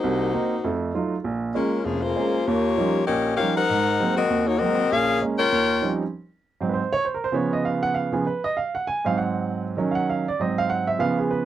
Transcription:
0.00 0.29 C2 medium
0.00 0.29 C3 medium
0.00 0.64 A#3 medium
0.00 0.83 D#4 medium
0.00 0.82 F#4 medium
0.00 0.82 C5 medium
0.33 0.53 A#3 soft
0.33 0.53 C4 soft
0.33 0.53 D#4 medium
0.64 0.90 F2 medium
0.64 0.90 A3 medium
0.94 1.14 F#3 soft
0.94 1.14 A3 soft
0.94 1.14 D#4 soft
0.94 1.14 F4 soft
1.24 1.51 A#1 medium
1.54 1.74 G#3 soft
1.54 1.84 G#3 medium
1.54 1.75 A#3 soft
1.54 1.75 C#4 soft
1.54 1.83 C#4 medium
1.54 1.83 F4 medium
1.54 1.83 A#4 medium
1.85 2.11 F1 medium
1.85 2.04 F3 medium
1.85 2.01 A#3 medium
1.85 2.04 C#4 medium
1.85 2.02 G#4 medium
2.02 2.44 A#3 medium
2.02 2.45 F4 medium
2.02 2.46 G#4 medium
2.02 2.46 C5 medium
2.16 2.36 G#3 soft
2.16 2.36 A#3 soft
2.16 2.36 C#4 soft
2.45 2.73 D#2 medium
2.45 3.07 A#3 medium
2.45 3.07 F4 medium
2.45 3.06 G4 medium
2.45 3.08 C#5 medium
2.77 2.97 F3 soft
2.77 2.97 G3 soft
2.77 2.97 C#4 soft
2.77 2.98 D#4 soft
3.06 3.34 A#1 medium
3.06 3.35 C#4 medium
3.06 3.35 G4 medium
3.06 3.36 A#4 medium
3.06 3.35 D#5 medium
3.36 3.58 F3 soft
3.36 3.59 G3 soft
3.36 3.54 C#4 medium
3.36 3.59 C#4 soft
3.36 3.59 D#4 soft
3.36 3.54 G4 medium
3.36 3.55 A#4 medium
3.36 3.54 F5 medium
3.56 4.13 D#4 medium
3.56 4.14 A#4 medium
3.56 4.14 C5 medium
3.56 4.14 F#5 medium
3.69 3.95 G#2 medium
4.00 4.19 F#3 soft
4.00 4.19 G#3 soft
4.00 4.19 A#3 soft
4.00 4.19 C4 medium
4.17 4.46 C4 medium
4.17 4.45 F#4 medium
4.17 4.46 A#4 medium
4.17 4.46 D#5 medium
4.30 4.56 D#2 medium
4.47 4.60 A#3 medium
4.47 4.60 D#4 medium
4.47 4.57 F#4 medium
4.47 4.60 C#5 medium
4.58 4.80 F#3 soft
4.58 4.80 G#3 soft
4.58 4.81 A#3 soft
4.58 4.90 C4 medium
4.58 4.80 C4 soft
4.58 4.90 F#4 medium
4.58 4.90 A#4 medium
4.58 4.90 D#5 loud
4.91 5.17 A#1 medium
4.91 5.21 C#4 loud
4.91 5.21 G#4 loud
4.91 5.21 A#4 medium
4.91 5.21 F5 loud
5.22 5.41 G#3 soft
5.22 5.41 A#3 soft
5.22 5.41 C#4 medium
5.39 5.96 F4 medium
5.39 5.96 A#4 medium
5.39 5.96 C#5 medium
5.39 5.96 G5 loud
5.52 5.78 D#2 medium
5.82 6.01 F3 soft
5.82 6.02 G3 soft
5.82 6.02 C4 soft
5.82 6.02 C#4 soft
5.82 6.02 D#4 soft
6.61 6.79 G#2 soft
6.61 6.79 F#3 soft
6.61 6.80 C4 medium
6.69 6.72 B4 soft
6.74 6.91 C5 medium
6.92 7.04 C#5 loud
7.05 7.14 C5 medium
7.14 7.24 A#4 medium
7.24 7.34 C5 medium
7.32 8.11 C#3 medium
7.32 8.11 F3 soft
7.32 8.12 B3 medium
7.32 7.52 C#5 medium
7.53 7.64 D#5 medium
7.65 7.83 F5 medium
7.83 7.94 F#5 medium
7.94 8.12 F5 medium
8.12 8.24 C#3 soft
8.12 8.24 F3 soft
8.12 8.24 B3 soft
8.12 8.25 G#4 medium
8.27 8.44 B4 medium
8.44 8.56 D#5 medium
8.57 8.74 F5 medium
8.75 8.86 F#5 medium
8.87 9.05 G#5 medium
9.05 9.74 G#2 medium
9.05 9.74 F#3 soft
9.05 9.74 C4 medium
9.05 9.17 F5 medium
9.18 9.63 F#5 medium
9.77 10.23 D#3 soft
9.77 10.24 F#3 soft
9.77 10.24 C#4 medium
9.91 9.93 F5 medium
9.91 10.07 F#5 medium
10.09 10.26 F5 medium
10.28 10.39 D5 medium
10.40 10.97 G#2 soft
10.40 10.97 F#3 soft
10.40 10.97 C4 medium
10.40 10.57 D#5 medium
10.58 10.69 F5 medium
10.70 10.87 F#5 medium
10.87 10.99 E5 medium
10.98 11.45 C#3 soft
10.98 11.45 F3 soft
10.98 11.45 B3 medium
10.98 11.17 F5 medium
11.19 11.29 G#4 medium
11.31 11.45 B4 medium

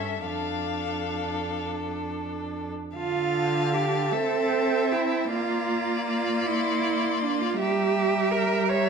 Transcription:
0.00 0.23 G2 soft
0.00 0.26 C#4 soft
0.00 0.25 A4 soft
0.00 0.26 E5 soft
0.26 2.71 F2 soft
0.26 2.71 D4 soft
0.26 2.71 A4 soft
0.26 1.63 F5 medium
2.96 4.13 D3 medium
2.96 3.75 F4 medium
2.96 4.14 F5 soft
2.96 5.28 A5 medium
3.73 4.14 G4 medium
4.12 5.30 C4 medium
4.12 4.94 A4 medium
4.12 5.30 E5 soft
4.92 5.30 E4 medium
5.30 7.55 A#3 medium
5.30 6.06 F4 medium
5.30 7.55 D5 medium
5.30 6.44 A#5 medium
6.08 6.48 F4 medium
6.46 7.23 E4 medium
6.46 7.58 C6 medium
7.22 7.43 D4 medium
7.41 7.59 F4 medium
7.59 8.89 G3 medium
7.59 8.33 G4 medium
7.59 8.67 E5 medium
7.59 8.89 A#5 medium
8.32 8.70 A#4 medium
8.69 8.89 C#5 medium
8.69 8.89 E5 medium

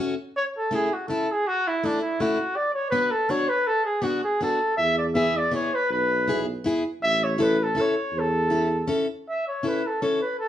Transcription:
0.00 0.13 A3 medium
0.00 0.14 C#4 medium
0.00 0.14 F#4 medium
0.36 0.45 C#5 medium
0.57 0.72 A4 medium
0.71 0.88 A3 medium
0.71 0.89 C#4 soft
0.71 0.89 E4 medium
0.71 0.95 G#4 medium
0.93 1.07 F#4 medium
1.08 1.25 A3 medium
1.08 1.26 C#4 medium
1.08 1.27 E4 medium
1.08 1.33 A4 medium
1.32 1.49 G#4 medium
1.47 1.69 F#4 loud
1.67 1.87 E4 medium
1.84 2.00 A3 medium
1.84 2.00 C#4 medium
1.84 2.00 D4 medium
1.84 2.01 E4 medium
2.01 2.22 E4 medium
2.20 2.37 A3 medium
2.20 2.37 C#4 soft
2.20 2.38 E4 medium
2.20 2.57 F#4 medium
2.56 2.74 D5 loud
2.74 2.90 C#5 medium
2.90 3.10 B3 medium
2.90 3.10 D4 medium
2.90 3.11 F#4 medium
2.90 3.12 B4 loud
3.11 3.31 A4 medium
3.29 3.47 B3 medium
3.29 3.47 D4 medium
3.29 3.47 F#4 medium
3.29 3.50 C#5 medium
3.49 3.69 B4 loud
3.67 3.85 A4 medium
3.85 4.05 G#4 medium
4.02 4.20 B3 medium
4.02 4.21 D4 medium
4.02 4.21 F#4 medium
4.02 4.23 F#4 medium
4.24 4.40 G#4 medium
4.41 4.58 B3 medium
4.41 4.59 D4 soft
4.41 4.59 F#4 medium
4.41 4.77 A4 medium
4.77 5.51 E2 medium
4.77 4.96 E5 loud
4.98 5.06 D5 medium
5.15 5.33 B3 medium
5.15 5.33 E4 medium
5.15 5.33 G#4 medium
5.15 5.38 E5 loud
5.37 5.54 D5 medium
5.51 5.70 B3 medium
5.51 5.70 E4 soft
5.51 5.71 G#4 medium
5.51 5.76 C#5 medium
5.74 5.91 B4 medium
5.90 6.63 B1 medium
5.90 6.44 B4 loud
6.28 6.45 B3 medium
6.28 6.45 E4 medium
6.28 6.46 G#4 medium
6.64 6.82 B3 medium
6.64 6.83 E4 medium
6.64 6.83 G#4 medium
7.02 7.74 A1 medium
7.02 7.25 E5 loud
7.24 7.44 C#5 medium
7.38 7.56 C#4 medium
7.38 7.56 E4 medium
7.38 7.57 A4 medium
7.42 7.65 B4 medium
7.63 7.82 A4 medium
7.75 7.93 C#4 medium
7.75 7.94 E4 medium
7.75 7.94 A4 medium
7.81 8.21 C#5 medium
8.13 8.86 E2 medium
8.19 8.91 A4 medium
8.50 8.68 C#4 medium
8.50 8.68 E4 medium
8.50 8.69 A4 medium
8.88 9.06 C#4 medium
8.88 9.06 E4 medium
8.88 9.06 A4 medium
9.29 9.46 E5 medium
9.48 9.69 C#5 medium
9.63 9.81 C#4 medium
9.63 9.82 E4 medium
9.63 9.82 A4 medium
9.68 9.88 B4 medium
9.86 10.02 A4 medium
10.02 10.20 C#4 medium
10.02 10.20 E4 soft
10.02 10.20 A4 medium
10.02 10.21 C#5 medium
10.21 10.38 B4 medium
10.39 10.48 A4 medium

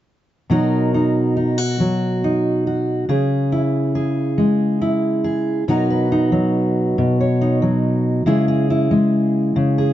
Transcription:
0.50 3.08 B2 medium
0.50 1.79 F#3 soft
0.50 0.93 D#4 soft
0.50 1.36 F#4 soft
0.50 3.05 A#4 medium
0.94 1.36 D#4 soft
1.37 1.58 D#4 soft
1.58 2.65 F#4 soft
1.80 3.09 F#3 medium
2.24 3.04 D#4 soft
2.67 3.04 F#4 soft
3.09 5.63 C#3 medium
3.09 3.94 G#4 medium
3.52 4.80 E4 soft
3.95 5.23 G#4 medium
4.38 5.63 G#3 medium
4.82 5.63 E4 medium
5.24 5.63 G#4 medium
5.68 6.97 B2 medium
5.68 6.31 F#3 medium
5.68 6.11 D#4 medium
5.68 8.23 F#4 medium
5.68 5.90 A#4 medium
5.90 7.20 B4 soft
6.12 7.40 D#4 soft
6.32 7.61 F#3 soft
6.98 8.26 B2 medium
7.21 8.23 C#5 soft
7.41 8.22 D#4 soft
7.62 8.26 F#3 soft
8.26 9.55 C#3 medium
8.26 8.91 G#3 soft
8.26 8.69 E4 medium
8.26 8.48 G#4 medium
8.48 9.78 G#4 medium
8.70 9.93 E4 soft
8.91 9.93 G#3 medium
9.56 9.93 C#3 medium
9.78 9.93 G#4 soft

